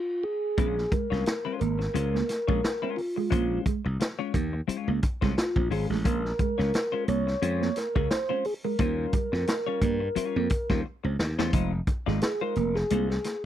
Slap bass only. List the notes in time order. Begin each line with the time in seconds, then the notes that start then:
0.58 A#1
1.12 C2
1.61 G#1
1.95 C#2
2.49 A#1
3.32 A#1
3.85 C2
4.34 D#2
4.69 muted slap bass stroke
4.88 C#2
5.22 C2
5.56 A#1
5.70 G#1
5.90 A1
6.05 A#1
6.59 C#2
7.08 C2
7.42 F2
7.96 C#2
8.79 D#2
9.33 F2
9.82 G2
10.17 muted slap bass stroke
10.36 F2
10.70 D#2
11.04 C#2
11.19 D#2
11.39 E2
11.53 F1
12.07 G#1
12.56 F1
12.91 C2